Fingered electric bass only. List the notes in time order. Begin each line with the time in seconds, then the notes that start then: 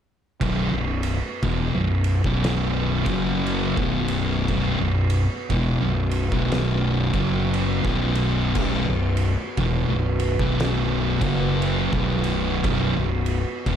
0.42 B0
0.73 B0
1.43 E1
1.74 B0
2.24 B0
3.06 F#1
3.78 B0
4.49 B0
4.80 B0
5.50 E1
5.82 B0
6.32 B0
7.14 F#1
7.85 B0
8.56 B0
8.88 B0
9.57 E1
9.88 B0
10.40 B0
11.21 F#1
11.93 B0
12.64 B0
12.96 B0
13.66 E1